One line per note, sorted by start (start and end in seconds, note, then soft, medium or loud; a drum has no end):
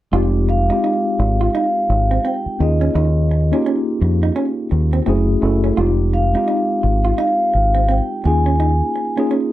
0.12 0.69 F1 loud
0.12 0.57 G#3 medium
0.12 0.58 C4 medium
0.12 0.58 D#4 medium
0.12 0.26 F4 medium
0.12 0.58 F4 medium
0.12 0.59 G4 medium
0.49 1.54 F5 medium
0.49 muted hollow-body jazz guitar stroke soft
0.69 1.82 G#3 medium
0.69 1.83 C4 medium
0.69 0.78 D#4 medium
0.69 1.83 D#4 medium
0.69 1.84 F4 medium
0.69 1.84 G4 medium
0.84 0.97 D#4 medium
1.19 1.47 G#1 medium
1.19 muted hollow-body jazz guitar stroke soft
1.41 1.49 F4 medium
1.55 1.68 D#4 medium
1.55 2.27 F5 medium
1.89 2.17 G#1 medium
1.89 muted hollow-body jazz guitar stroke soft
2.11 2.19 C4 medium
2.25 2.38 C4 medium
2.25 2.61 G5 medium
2.46 muted fingered electric bass stroke soft
2.59 2.88 D#2 medium
2.59 3.32 A#3 medium
2.59 3.32 C#4 medium
2.59 3.33 D#4 medium
2.59 3.33 F4 medium
2.59 3.33 G#4 medium
2.59 3.62 D#5 medium
2.59 muted hollow-body jazz guitar stroke soft
2.81 2.90 C#4 medium
2.95 3.51 D#2 loud
2.95 3.09 D#4 medium
3.31 muted hollow-body jazz guitar stroke soft
3.51 4.65 A#3 medium
3.51 4.65 C#4 medium
3.51 3.61 C#4 medium
3.51 4.65 D#4 medium
3.51 4.66 F4 medium
3.51 4.66 G4 medium
3.66 3.79 C#4 medium
4.01 4.29 F2 medium
4.01 muted hollow-body jazz guitar stroke soft
4.23 4.31 D#4 medium
4.36 4.49 C#4 medium
4.71 5.00 D#2 medium
4.71 muted hollow-body jazz guitar stroke soft
4.93 5.01 C4 medium
5.06 5.35 F#1 medium
5.06 5.37 A3 medium
5.06 5.20 C4 medium
5.06 5.37 C#4 medium
5.06 5.37 E4 medium
5.06 5.38 F#4 medium
5.06 5.38 G#4 loud
5.41 5.70 F#1 loud
5.41 5.72 A3 medium
5.41 5.72 C#4 medium
5.41 5.73 E4 medium
5.41 5.73 F#4 medium
5.41 5.73 A4 medium
5.41 muted hollow-body jazz guitar stroke soft
5.64 5.72 C#4 medium
5.77 6.34 F1 loud
5.77 6.22 G#3 medium
5.77 6.22 C4 medium
5.77 6.23 D#4 medium
5.77 5.90 F4 medium
5.77 6.23 F4 medium
5.77 6.23 G4 medium
6.13 7.19 F5 medium
6.13 muted hollow-body jazz guitar stroke soft
6.34 7.47 G#3 medium
6.34 7.47 C4 medium
6.34 6.43 D#4 medium
6.34 7.48 D#4 medium
6.34 7.48 F4 medium
6.34 7.49 G4 medium
6.48 6.61 D#4 medium
6.83 7.11 G#1 medium
6.83 muted hollow-body jazz guitar stroke soft
7.05 7.13 F4 medium
7.18 7.31 D#4 medium
7.18 7.92 F5 loud
7.54 7.99 G#1 medium
7.54 muted hollow-body jazz guitar stroke soft
7.75 7.83 C4 medium
7.89 8.02 C4 medium
7.89 8.26 G5 medium
8.24 8.81 D#2 medium
8.24 8.96 A#3 medium
8.24 8.97 C#4 medium
8.24 8.97 D#4 medium
8.24 8.98 F4 medium
8.24 8.98 G#4 medium
8.24 9.27 G#5 medium
8.24 muted hollow-body jazz guitar stroke soft
8.46 8.54 C#4 medium
8.60 8.73 D#4 medium
8.96 muted hollow-body jazz guitar stroke soft
9.17 9.53 A#3 medium
9.17 9.53 C#4 medium
9.17 9.26 C#4 medium
9.17 9.53 D#4 medium
9.17 9.53 F4 medium
9.17 9.53 G#4 medium
9.31 9.44 C#4 medium